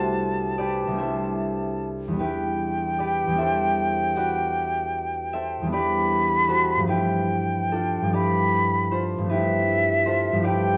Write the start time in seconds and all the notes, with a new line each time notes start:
Already playing: C2 G3 A3 D4 E4 F#4 G4 A4 B4 C5 D5 E5 A5
0.58 G4 B4 D5
0.87 C2 G3
0.92 A3 D4
0.97 E4 A4 C5 E5
2.08 E2 G3
2.13 B3 D4
2.18 E4 G4 B4 G5
2.98 G4 B4 D5
3.27 E2 G3
3.32 B3 D4
3.37 E4 A4 C5 E5
4.16 F#4 B4 D5 F#5
5.33 A4 C5 E5
5.61 E2 G3
5.67 B3 D4
5.72 E4 G4 B4 D5 B5
6.48 F#4 A4 C5
6.76 G2 F3
6.81 A3 D4
6.87 E4 G4 B4 G5
7.72 D4 F4 A4
8.02 G2 F3
8.07 A3 D4
8.12 E4 G4 B4 D5 B5
8.91 F4 A4 C5
9.18 G2 F3
9.24 A3 D4
9.29 E4 G4 B4 E5
10.06 F4 A4 C5
10.32 G2 F3
10.38 A3 D4
10.42 E4 G4 B4 D5 G5